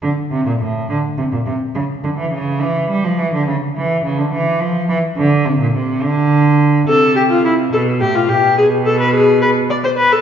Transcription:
0, 0, Header, 1, 3, 480
1, 0, Start_track
1, 0, Tempo, 572519
1, 29, Time_signature, 12, 3, 24, 8
1, 3388, Tempo, 566038
1, 8622, End_track
2, 0, Start_track
2, 0, Title_t, "Viola"
2, 0, Program_c, 0, 41
2, 5795, Note_on_c, 0, 69, 84
2, 6019, Note_off_c, 0, 69, 0
2, 6033, Note_on_c, 0, 67, 78
2, 6082, Note_off_c, 0, 67, 0
2, 6153, Note_on_c, 0, 65, 74
2, 6273, Note_off_c, 0, 65, 0
2, 6277, Note_on_c, 0, 64, 77
2, 6345, Note_off_c, 0, 64, 0
2, 6515, Note_on_c, 0, 69, 73
2, 6583, Note_off_c, 0, 69, 0
2, 6750, Note_on_c, 0, 67, 80
2, 6872, Note_on_c, 0, 65, 73
2, 6885, Note_off_c, 0, 67, 0
2, 6990, Note_on_c, 0, 67, 82
2, 7003, Note_off_c, 0, 65, 0
2, 7228, Note_off_c, 0, 67, 0
2, 7233, Note_on_c, 0, 68, 82
2, 7301, Note_off_c, 0, 68, 0
2, 7471, Note_on_c, 0, 69, 82
2, 7589, Note_off_c, 0, 69, 0
2, 7594, Note_on_c, 0, 71, 73
2, 7707, Note_off_c, 0, 71, 0
2, 7712, Note_on_c, 0, 68, 83
2, 7943, Note_off_c, 0, 68, 0
2, 7948, Note_on_c, 0, 71, 76
2, 8016, Note_off_c, 0, 71, 0
2, 8187, Note_on_c, 0, 74, 72
2, 8236, Note_off_c, 0, 74, 0
2, 8305, Note_on_c, 0, 72, 82
2, 8354, Note_off_c, 0, 72, 0
2, 8422, Note_on_c, 0, 71, 90
2, 8544, Note_on_c, 0, 69, 82
2, 8557, Note_off_c, 0, 71, 0
2, 8622, Note_off_c, 0, 69, 0
2, 8622, End_track
3, 0, Start_track
3, 0, Title_t, "Cello"
3, 0, Program_c, 1, 42
3, 22, Note_on_c, 1, 50, 71
3, 89, Note_off_c, 1, 50, 0
3, 262, Note_on_c, 1, 48, 66
3, 380, Note_off_c, 1, 48, 0
3, 385, Note_on_c, 1, 46, 66
3, 435, Note_off_c, 1, 46, 0
3, 503, Note_on_c, 1, 45, 63
3, 744, Note_off_c, 1, 45, 0
3, 748, Note_on_c, 1, 50, 72
3, 815, Note_off_c, 1, 50, 0
3, 990, Note_on_c, 1, 48, 65
3, 1039, Note_off_c, 1, 48, 0
3, 1110, Note_on_c, 1, 46, 65
3, 1159, Note_off_c, 1, 46, 0
3, 1227, Note_on_c, 1, 48, 75
3, 1294, Note_off_c, 1, 48, 0
3, 1469, Note_on_c, 1, 49, 69
3, 1536, Note_off_c, 1, 49, 0
3, 1710, Note_on_c, 1, 50, 65
3, 1759, Note_off_c, 1, 50, 0
3, 1827, Note_on_c, 1, 52, 63
3, 1944, Note_off_c, 1, 52, 0
3, 1949, Note_on_c, 1, 49, 64
3, 2190, Note_on_c, 1, 52, 71
3, 2202, Note_off_c, 1, 49, 0
3, 2427, Note_off_c, 1, 52, 0
3, 2432, Note_on_c, 1, 55, 69
3, 2549, Note_on_c, 1, 53, 67
3, 2562, Note_off_c, 1, 55, 0
3, 2670, Note_on_c, 1, 52, 72
3, 2682, Note_off_c, 1, 53, 0
3, 2788, Note_off_c, 1, 52, 0
3, 2793, Note_on_c, 1, 50, 69
3, 2903, Note_off_c, 1, 50, 0
3, 2908, Note_on_c, 1, 49, 74
3, 2976, Note_off_c, 1, 49, 0
3, 3151, Note_on_c, 1, 52, 67
3, 3384, Note_off_c, 1, 52, 0
3, 3390, Note_on_c, 1, 49, 68
3, 3509, Note_on_c, 1, 50, 68
3, 3522, Note_off_c, 1, 49, 0
3, 3618, Note_off_c, 1, 50, 0
3, 3624, Note_on_c, 1, 52, 76
3, 3867, Note_on_c, 1, 53, 73
3, 3879, Note_off_c, 1, 52, 0
3, 4103, Note_off_c, 1, 53, 0
3, 4108, Note_on_c, 1, 52, 77
3, 4176, Note_off_c, 1, 52, 0
3, 4347, Note_on_c, 1, 50, 74
3, 4587, Note_on_c, 1, 48, 70
3, 4599, Note_off_c, 1, 50, 0
3, 4702, Note_off_c, 1, 48, 0
3, 4707, Note_on_c, 1, 46, 63
3, 4823, Note_off_c, 1, 46, 0
3, 4828, Note_on_c, 1, 48, 68
3, 5068, Note_on_c, 1, 50, 82
3, 5080, Note_off_c, 1, 48, 0
3, 5785, Note_off_c, 1, 50, 0
3, 5790, Note_on_c, 1, 48, 67
3, 6500, Note_off_c, 1, 48, 0
3, 6507, Note_on_c, 1, 47, 65
3, 6749, Note_on_c, 1, 45, 66
3, 6761, Note_off_c, 1, 47, 0
3, 6986, Note_on_c, 1, 47, 67
3, 6999, Note_off_c, 1, 45, 0
3, 8622, Note_off_c, 1, 47, 0
3, 8622, End_track
0, 0, End_of_file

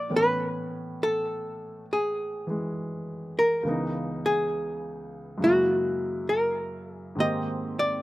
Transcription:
0, 0, Header, 1, 3, 480
1, 0, Start_track
1, 0, Tempo, 883652
1, 57, Time_signature, 4, 2, 24, 8
1, 4356, End_track
2, 0, Start_track
2, 0, Title_t, "Hollow-body jazz guitar"
2, 0, Program_c, 0, 26
2, 0, Note_on_c, 0, 74, 78
2, 76, Note_off_c, 0, 74, 0
2, 89, Note_on_c, 0, 71, 77
2, 560, Note_on_c, 0, 69, 83
2, 564, Note_off_c, 0, 71, 0
2, 1004, Note_off_c, 0, 69, 0
2, 1047, Note_on_c, 0, 68, 64
2, 1487, Note_off_c, 0, 68, 0
2, 1840, Note_on_c, 0, 70, 69
2, 2310, Note_off_c, 0, 70, 0
2, 2313, Note_on_c, 0, 68, 75
2, 2954, Note_on_c, 0, 66, 71
2, 2958, Note_off_c, 0, 68, 0
2, 3402, Note_off_c, 0, 66, 0
2, 3418, Note_on_c, 0, 70, 69
2, 3771, Note_off_c, 0, 70, 0
2, 3771, Note_on_c, 0, 68, 69
2, 3912, Note_off_c, 0, 68, 0
2, 3912, Note_on_c, 0, 75, 77
2, 4231, Note_off_c, 0, 75, 0
2, 4233, Note_on_c, 0, 74, 84
2, 4356, Note_off_c, 0, 74, 0
2, 4356, End_track
3, 0, Start_track
3, 0, Title_t, "Grand piano"
3, 0, Program_c, 1, 0
3, 0, Control_c, 1, 64, 127
3, 0, Note_on_c, 1, 46, 50
3, 0, Note_on_c, 1, 53, 44
3, 0, Note_on_c, 1, 56, 41
3, 0, Note_on_c, 1, 62, 42
3, 0, Note_on_c, 1, 64, 53
3, 53, Note_on_c, 1, 45, 45
3, 56, Note_off_c, 1, 53, 0
3, 56, Note_on_c, 1, 52, 42
3, 58, Note_on_c, 1, 61, 46
3, 59, Note_off_c, 1, 56, 0
3, 63, Note_off_c, 1, 46, 0
3, 63, Control_c, 1, 64, 0
3, 64, Note_off_c, 1, 62, 0
3, 64, Note_on_c, 1, 59, 36
3, 66, Note_off_c, 1, 64, 0
3, 155, Control_c, 1, 64, 127
3, 1333, Note_off_c, 1, 52, 0
3, 1341, Note_on_c, 1, 52, 41
3, 1358, Note_on_c, 1, 56, 45
3, 1970, Note_off_c, 1, 45, 0
3, 1971, Note_on_c, 1, 37, 45
3, 1972, Note_off_c, 1, 61, 0
3, 1975, Note_off_c, 1, 52, 0
3, 1975, Note_off_c, 1, 59, 0
3, 1978, Control_c, 1, 64, 0
3, 1980, Note_on_c, 1, 49, 42
3, 1984, Note_off_c, 1, 56, 0
3, 1992, Note_on_c, 1, 52, 40
3, 1995, Note_on_c, 1, 59, 44
3, 2003, Note_on_c, 1, 63, 51
3, 2086, Control_c, 1, 64, 127
3, 2921, Note_on_c, 1, 42, 51
3, 2928, Note_off_c, 1, 49, 0
3, 2930, Note_off_c, 1, 37, 0
3, 2936, Note_on_c, 1, 49, 45
3, 2937, Control_c, 1, 64, 0
3, 2940, Note_off_c, 1, 52, 0
3, 2942, Note_off_c, 1, 59, 0
3, 2946, Note_off_c, 1, 63, 0
3, 2948, Note_on_c, 1, 56, 43
3, 2966, Note_on_c, 1, 58, 42
3, 2980, Note_on_c, 1, 64, 53
3, 3033, Control_c, 1, 64, 127
3, 3885, Note_on_c, 1, 44, 49
3, 3890, Note_off_c, 1, 42, 0
3, 3892, Note_on_c, 1, 51, 43
3, 3895, Note_off_c, 1, 58, 0
3, 3898, Note_off_c, 1, 49, 0
3, 3901, Control_c, 1, 64, 0
3, 3903, Note_on_c, 1, 58, 48
3, 3904, Note_off_c, 1, 56, 0
3, 3904, Note_on_c, 1, 60, 49
3, 3910, Note_on_c, 1, 67, 58
3, 3920, Note_off_c, 1, 64, 0
3, 4014, Control_c, 1, 64, 127
3, 4356, Note_off_c, 1, 44, 0
3, 4356, Note_off_c, 1, 51, 0
3, 4356, Note_off_c, 1, 58, 0
3, 4356, Note_off_c, 1, 60, 0
3, 4356, Note_off_c, 1, 67, 0
3, 4356, End_track
0, 0, End_of_file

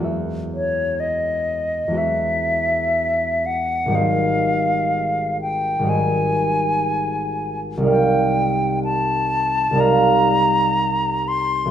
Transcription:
0, 0, Header, 1, 3, 480
1, 0, Start_track
1, 0, Tempo, 975610
1, 27, Time_signature, 4, 2, 24, 8
1, 5760, End_track
2, 0, Start_track
2, 0, Title_t, "Flute"
2, 0, Program_c, 0, 73
2, 268, Note_on_c, 0, 73, 46
2, 492, Note_on_c, 0, 75, 39
2, 500, Note_off_c, 0, 73, 0
2, 972, Note_on_c, 0, 76, 50
2, 979, Note_off_c, 0, 75, 0
2, 1702, Note_on_c, 0, 78, 50
2, 1710, Note_off_c, 0, 76, 0
2, 1944, Note_on_c, 0, 77, 56
2, 1951, Note_off_c, 0, 78, 0
2, 2661, Note_off_c, 0, 77, 0
2, 2664, Note_on_c, 0, 79, 50
2, 2898, Note_on_c, 0, 80, 62
2, 2906, Note_off_c, 0, 79, 0
2, 3744, Note_off_c, 0, 80, 0
2, 3870, Note_on_c, 0, 79, 62
2, 4329, Note_off_c, 0, 79, 0
2, 4352, Note_on_c, 0, 81, 64
2, 4822, Note_on_c, 0, 82, 72
2, 4830, Note_off_c, 0, 81, 0
2, 5550, Note_on_c, 0, 84, 59
2, 5557, Note_off_c, 0, 82, 0
2, 5760, Note_off_c, 0, 84, 0
2, 5760, End_track
3, 0, Start_track
3, 0, Title_t, "Harp"
3, 0, Program_c, 1, 46
3, 0, Note_on_c, 1, 40, 31
3, 0, Note_on_c, 1, 56, 25
3, 0, Note_on_c, 1, 66, 25
3, 11, Note_on_c, 1, 71, 25
3, 20, Note_on_c, 1, 76, 26
3, 918, Note_off_c, 1, 40, 0
3, 924, Note_on_c, 1, 40, 34
3, 931, Note_off_c, 1, 56, 0
3, 937, Note_on_c, 1, 56, 29
3, 941, Note_off_c, 1, 66, 0
3, 947, Note_on_c, 1, 66, 28
3, 951, Note_off_c, 1, 71, 0
3, 957, Note_on_c, 1, 71, 27
3, 964, Note_off_c, 1, 76, 0
3, 970, Note_on_c, 1, 76, 28
3, 1898, Note_on_c, 1, 32, 32
3, 1908, Note_on_c, 1, 55, 29
3, 1918, Note_on_c, 1, 63, 29
3, 1929, Note_on_c, 1, 72, 29
3, 1939, Note_on_c, 1, 75, 27
3, 1945, Note_off_c, 1, 40, 0
3, 1957, Note_off_c, 1, 66, 0
3, 1961, Note_off_c, 1, 71, 0
3, 1968, Note_off_c, 1, 76, 0
3, 2844, Note_off_c, 1, 32, 0
3, 2849, Note_on_c, 1, 32, 36
3, 2856, Note_off_c, 1, 56, 0
3, 2857, Note_off_c, 1, 55, 0
3, 2863, Note_on_c, 1, 55, 31
3, 2866, Note_off_c, 1, 63, 0
3, 2872, Note_on_c, 1, 63, 31
3, 2878, Note_off_c, 1, 72, 0
3, 2884, Note_on_c, 1, 72, 32
3, 2890, Note_off_c, 1, 75, 0
3, 2896, Note_on_c, 1, 75, 30
3, 3824, Note_on_c, 1, 36, 39
3, 3832, Note_off_c, 1, 55, 0
3, 3838, Note_on_c, 1, 55, 29
3, 3842, Note_off_c, 1, 63, 0
3, 3848, Note_on_c, 1, 63, 31
3, 3859, Note_on_c, 1, 74, 31
3, 3867, Note_on_c, 1, 77, 31
3, 3870, Note_off_c, 1, 32, 0
3, 4771, Note_off_c, 1, 36, 0
3, 4777, Note_on_c, 1, 36, 41
3, 4779, Note_off_c, 1, 55, 0
3, 4785, Note_on_c, 1, 55, 34
3, 4793, Note_off_c, 1, 63, 0
3, 4799, Note_on_c, 1, 63, 34
3, 4802, Note_off_c, 1, 72, 0
3, 4802, Note_off_c, 1, 74, 0
3, 4807, Note_on_c, 1, 74, 32
3, 4813, Note_off_c, 1, 77, 0
3, 4815, Note_off_c, 1, 75, 0
3, 4819, Note_on_c, 1, 77, 32
3, 5734, Note_on_c, 1, 35, 41
3, 5744, Note_on_c, 1, 57, 32
3, 5749, Note_off_c, 1, 63, 0
3, 5760, Note_off_c, 1, 35, 0
3, 5760, Note_off_c, 1, 36, 0
3, 5760, Note_off_c, 1, 55, 0
3, 5760, Note_off_c, 1, 57, 0
3, 5760, Note_off_c, 1, 74, 0
3, 5760, Note_off_c, 1, 77, 0
3, 5760, End_track
0, 0, End_of_file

